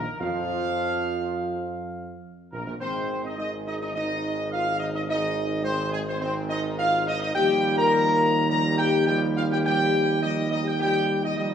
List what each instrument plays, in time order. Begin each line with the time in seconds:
Already playing: trumpet section A#4
0.19 tuba F2, trombone section F3, french horn section F4, trumpet section F5
2.52 tuba A#1, trombone section A#2, french horn section A#3, trumpet section A#4
2.66 tuba A#1, trombone section A#2, french horn section A#3, trumpet section A#4
2.80 tuba G#1, trombone section D#3 G#3, french horn section C4, trumpet section C5
3.24 french horn section D#4, trumpet section D#5
3.37 trombone section D#3 G#3, french horn section D#4, trumpet section D#5
3.67 french horn section D#4, trumpet section D#5
3.82 french horn section D#4, trumpet section D#5
3.94 trombone section D#3 G#3, french horn section D#4, trumpet section D#5
4.52 french horn section F4, trumpet section F5
4.80 french horn section D#4, trumpet section D#5
4.93 french horn section D#4, trumpet section D#5
5.07 trombone section D#3 G#3, french horn section D#4, trumpet section D#5
5.63 trombone section D#3 G#3, french horn section C4, trumpet section C5
5.92 french horn section G#3, trumpet section G#4
6.06 french horn section C4, trumpet section C5
6.20 trombone section D#3 G#3, french horn section C4, trumpet section C5
6.49 french horn section D#4, trumpet section D#5
6.79 french horn section F4, trumpet section F5
7.06 french horn section D#4, trumpet section D#5
7.19 french horn section D#4, trumpet section D#5
7.34 tuba D#2, trombone section F3 G3, french horn section G4, trumpet section G5
7.78 french horn section A#4, trumpet section A#5
8.48 trombone section F3 G3, french horn section A#4, trumpet section A#5
8.78 french horn section G4, trumpet section G5
9.06 trombone section F3 G3, french horn section G4, trumpet section G5
9.36 french horn section F4, trumpet section F5
9.50 french horn section G4, trumpet section G5
9.64 trombone section F3 G3, french horn section G4, trumpet section G5
10.20 trombone section F3 G3, french horn section D#4, trumpet section D#5
10.51 french horn section D#4, trumpet section D#5
10.63 french horn section G4
10.67 trumpet section G5
10.78 trombone section F3 G3, french horn section G4, trumpet section G5
11.22 french horn section D#4, trumpet section D#5
11.36 trombone section F3 G3, french horn section D#4, trumpet section D#5